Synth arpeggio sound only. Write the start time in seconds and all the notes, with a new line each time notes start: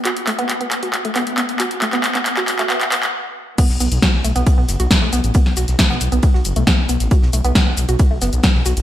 0.05 F#4
0.27 A3
0.39 B3
0.61 B3
0.83 F#4
1.05 A3
1.16 B3
1.38 B3
1.60 F#4
1.82 A3
1.93 B3
2.15 B3
2.37 F#4
2.59 A3
2.70 B3
2.92 B3
3.58 B3
3.80 B3
4.02 F#4
4.24 A3
4.36 B3
4.58 B3
4.80 F#4
5.02 A3
5.13 B3
5.35 B3
5.57 F#4
5.79 A3
5.90 B3
6.12 B3
6.34 F#4
6.56 A3
6.67 B3
6.89 B3
7.11 F#4
7.33 A3
7.44 B3
7.67 B3
7.89 F#4
8.11 A3
8.22 B3
8.44 B3
8.66 F#4